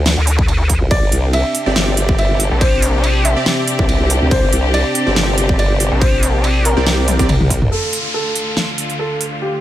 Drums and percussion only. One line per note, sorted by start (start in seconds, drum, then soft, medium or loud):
0.06 snare loud
0.06 ride medium
0.27 closed hi-hat medium
0.39 kick loud
0.48 ride soft
0.70 kick medium
0.70 closed hi-hat medium
0.91 kick loud
0.91 ride medium
1.12 closed hi-hat medium
1.33 ride soft
1.55 closed hi-hat medium
1.76 snare loud
1.76 ride medium
1.97 closed hi-hat medium
2.09 kick loud
2.19 ride soft
2.40 closed hi-hat medium
2.61 kick loud
2.61 ride medium
2.82 closed hi-hat medium
3.04 ride soft
3.25 closed hi-hat medium
3.46 snare loud
3.46 ride medium
3.68 closed hi-hat medium
3.79 kick loud
3.89 ride soft
4.10 closed hi-hat medium
4.31 kick loud
4.31 ride medium
4.53 closed hi-hat medium
4.74 ride soft
4.95 closed hi-hat medium
5.16 snare loud
5.16 ride medium
5.38 closed hi-hat medium
5.49 kick loud
5.59 ride soft
5.80 closed hi-hat medium
6.01 kick loud
6.01 ride medium
6.23 closed hi-hat medium
6.44 ride soft
6.65 closed hi-hat medium
6.87 snare loud
6.87 ride medium
7.08 closed hi-hat medium
7.08 high tom medium
7.19 kick loud
7.19 closed hi-hat soft
7.19 high tom medium
7.29 mid tom medium
7.29 ride soft
7.41 mid tom medium
7.50 kick medium
7.50 closed hi-hat medium
7.62 mid tom medium
7.93 closed hi-hat medium
8.36 closed hi-hat medium
8.57 snare loud
8.78 closed hi-hat medium
8.90 closed hi-hat soft
9.21 closed hi-hat medium